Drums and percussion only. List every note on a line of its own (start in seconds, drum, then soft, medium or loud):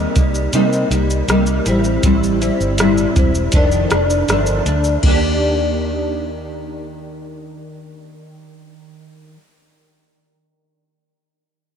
0.16 kick medium
0.16 closed hi-hat medium
0.16 shaker medium
0.35 shaker medium
0.53 closed hi-hat medium
0.53 shaker medium
0.73 shaker soft
0.91 closed hi-hat medium
0.91 shaker soft
1.10 shaker medium
1.29 cross-stick medium
1.29 closed hi-hat medium
1.29 shaker medium
1.46 shaker medium
1.66 closed hi-hat soft
1.66 shaker medium
1.84 shaker soft
2.03 kick loud
2.03 closed hi-hat medium
2.03 shaker medium
2.24 shaker medium
2.42 closed hi-hat medium
2.42 shaker medium
2.61 shaker soft
2.78 cross-stick medium
2.78 closed hi-hat medium
2.78 shaker medium
2.98 shaker medium
3.16 kick loud
3.16 closed hi-hat medium
3.16 shaker medium
3.35 shaker medium
3.52 kick medium
3.52 closed hi-hat medium
3.52 shaker medium
3.72 shaker medium
3.91 cross-stick medium
3.91 closed hi-hat medium
3.91 shaker medium
4.10 shaker medium
4.29 cross-stick medium
4.29 closed hi-hat medium
4.29 shaker medium
4.46 shaker medium
4.66 closed hi-hat soft
4.66 shaker medium
4.84 shaker soft
5.03 kick loud
5.03 crash medium